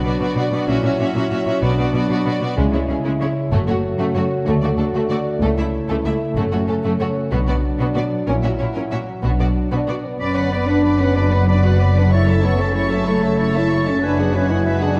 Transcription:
Already playing: B2 F#3 D4
0.04 B2 B3 F#4 D5
0.20 B2 B3 F#4 B4 D5
0.36 B2 B3 F#4 D5
0.52 B2 B3 F#4 D5
0.68 A#1 A#2 C#4 E4 F#4 E5
0.84 A#2 A#3 C#4 F#4 E5
0.99 A#2 C#4 F#4 E5
1.15 A#2 C#4 F#4 C#5 E5
1.30 A#2 C#4 F#4 E5
1.47 A#2 C#4 F#4 E5
1.62 B1 B2 B3 D4 F#4 D5
1.78 B2 F#3 B3 F#4 D5
1.94 B2 B3 F#4 D5
2.10 B2 B3 F#4 B4 D5
2.25 B2 B3 F#4 D5
2.42 B2 B3 F#4 D5
2.57 C#2 C#3 G#3 E4
2.73 C#3 G#3 C#4 E4 C#5
2.89 C#3 G#3 C#4 E4 G#4
3.05 C#3 G#3 E4 G#4
3.21 C#3 G#3 E4 C#5
3.37 E4
3.52 F#1 F#2 A3 F#4
3.67 F#2 C#3 A3 F#4 C#5
3.84 F#4
3.98 F#2 A3 F#4 A4
4.15 F#2 A3 F#4 C#5
4.32 F#4
4.46 D2 D3 A3 F#4
4.62 D2 A3 D4 F#4 D5
4.78 D2 A3 D4 F#4 A4
4.94 D2 A3 F#4 A4
5.10 D2 A3 F#4 D5
5.27 F#4
5.42 C#2 C#3 A3 E4 A4
5.57 C#2 A3 C#4 E4 E5
5.74 E4
5.88 C#2 A3 A4
6.05 C#2 A3 E4 E5
6.21 E4
6.37 F#1 F#2 A3 C#4 F#4
6.52 F#2 C#3 A3 F#4 C#5
6.68 F#2 A3 C#4 F#4 A4
6.84 F#2 A3 F#4 A4
7.00 F#2 A3 F#4 C#5
7.16 F#4
7.31 B1 B2 F#3 B3 D4 F#4
7.48 B2 B3 F#4 D5
7.64 F#4
7.79 B2 B3 F#4 D5
7.95 B2 B3 F#4 D5
8.12 F#3
8.27 A#1 A#2 C#4 E4 A#4
8.43 A#2 E3 C#4 F#4 E5
8.59 A#2 C#4 E4 F#4 C#5
8.74 A#2 C#4 A#4 E5
8.91 A#2 C#4 F#4 E5
9.08 F#3
9.23 B1 B2 B3 D4 F#4
9.39 B2 B3 F#4 D5
9.57 F#4
9.72 B2 B3 D4 F#4 D5
9.88 B2 B3 F#4 D5
10.05 F#3 B3
10.20 F#1 F#2 F#3 B3 C#4 B4 D5 B5
10.36 D3 B4 D5 F#5 B5
10.51 B3 F#4 B4 D5 B5
10.67 D4 B4 D5 F#5 B5
10.83 F#3 B4 D5 B5
10.99 D3 C#4 B4 D5 F#5 B5
11.15 F#2 D4 B4 D5 B5
11.32 F#3 B4 D5 F#5 B5
11.47 D4 F#4 B4 D5 B5
11.63 F#4 B4 D5 F#5 B5
11.79 F#3 B4 D5 B5
11.95 D3 D4 B4 D5 F#5 B5
12.11 F#2 C#3 A3 E4 C#5 A5 C#6
12.27 C#3 A4 C#5 E5 A5
12.43 B3 E4 C#5 A5 C#6
12.59 C#4 A4 C#5 E5 A5
12.75 A3 E4 C#5 A5 C#6
12.91 C#3 C#4 A4 C#5 E5 A5
13.07 F#2 A3 E4 C#5 A5 C#6
13.22 A3 A4 C#5 E5 A5
13.38 E4 C#5 A5 C#6
13.53 E4 A4 C#5 E5 A5
13.70 A3 E4 C#5 A5 C#6
13.86 C#3 C#4 A4 C#5 E5 A5
14.01 F#1 F#2 F#3 G#3 D4 F#4 B4 E5 G#5
14.18 F#3 F#4 G#4 B4 F#5 G#5
14.33 C#4 F#4 B4 E5 G#5
14.48 E4 F#4 G#4 B4 F#5 G#5
14.65 G#3 F#4 B4 E5 G#5
14.80 F#3 D4 F#4 G#4 B4 F#5 G#5
14.96 B4 E5

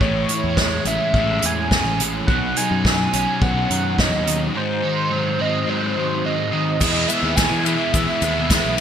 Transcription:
0.01 A1 A2 E3 A3 C#5, kick
0.29 A2 E3 E4, closed hi-hat
0.44 E2
0.57 A2 E3 G#3, kick, snare
0.85 A1 A2 E3 C#4 E5, closed hi-hat
1.14 A1 A2 E3 G#3 A3, kick
1.42 E2 A2 E3 G#5, closed hi-hat
1.71 A2 E3 C#4, kick, snare
1.85 A1
2.00 A2 E3, closed hi-hat
2.27 B1 B2 F#3 B3 D#4 F#4 C#5 F#5, kick
2.56 B2 F#3 D#4 G#5, closed hi-hat
2.71 F#2
2.85 B2 F#3, kick, snare
3.13 B1 B2 F#3 C#4, closed hi-hat
3.41 B1 B2 F#3 B3 F#5, kick
3.70 F#2 B2 D#3 F#3, closed hi-hat
3.98 B2 F#3 C#4 D#5, kick, snare
4.12 D#2
4.26 B2 D#3 F#3, closed hi-hat
4.54 G#2 D#3 G#3 F#4 C5
4.83 G#2 D#3 D#4
5.11 G#2 D#3 F#3
5.39 G#2 D#3 C4 D#5
5.66 G#2 D#3 F#3 G#3 C5
5.96 G#2 D#3
6.24 G#2 D#3 C4 D#5
6.52 G#2 D#3
6.80 E2 B2 E3 G#3 B3 E4 G#4 B4 D#5 B5, kick, crash, shaker
7.08 E2 B2 E3 G#3 B3 E4 E5, ride, shaker
7.23 D#2
7.36 E2 B2 E3 G#3 B3 E4 G#5, kick, snare, ride, shaker
7.51 E3
7.64 E2 B2 E3 G#3 B3 E4 E5, ride, shaker
7.93 E2 B2 E3 G#3 B3 E4 E5, kick, ride, shaker
8.22 D#2 E2 B2 E3 G#3 B3 E4, ride, shaker
8.50 E2 B2 E3 G#3 B3 E4, kick, snare, ride, shaker
8.65 B1

